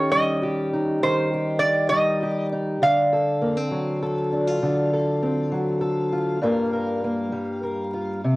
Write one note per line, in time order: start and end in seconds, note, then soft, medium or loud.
0.00 1.02 D#3 medium
0.00 1.62 C#4 medium
0.00 0.42 G4 medium
0.00 0.11 C#5 medium
0.11 1.91 G3 medium
0.11 0.68 D#5 medium
0.43 1.32 G4 medium
0.73 2.51 D#4 medium
1.03 2.79 D#3 medium
1.03 1.58 C5 medium
1.34 2.22 G4 medium
1.59 1.89 D5 medium
1.89 2.78 G3 medium
1.89 2.47 D#5 medium
2.23 2.83 G4 medium
2.53 2.79 D#4 medium
2.82 4.61 D3 medium
2.82 8.36 F5 loud
3.13 4.01 A4 medium
3.42 3.57 A#3 medium
3.57 5.21 C4 soft
3.71 5.50 F#3 medium
4.03 4.92 A4 medium
4.32 4.47 D4 medium
4.47 6.11 F4 medium
4.62 6.40 D3 medium
4.93 5.80 A4 medium
5.22 6.39 C4 medium
5.51 6.39 F#3 medium
5.81 6.39 A4 medium
6.12 6.39 F4 medium
6.41 8.23 G2 medium
6.41 7.32 G3 medium
6.41 7.03 A#3 medium
6.41 7.93 F4 medium
6.41 6.73 A#4 medium
6.73 7.62 A#4 medium
7.04 8.36 A#3 medium
7.32 8.20 G3 medium
7.63 8.20 A#4 medium
7.94 8.20 F4 medium
8.24 8.36 C3 medium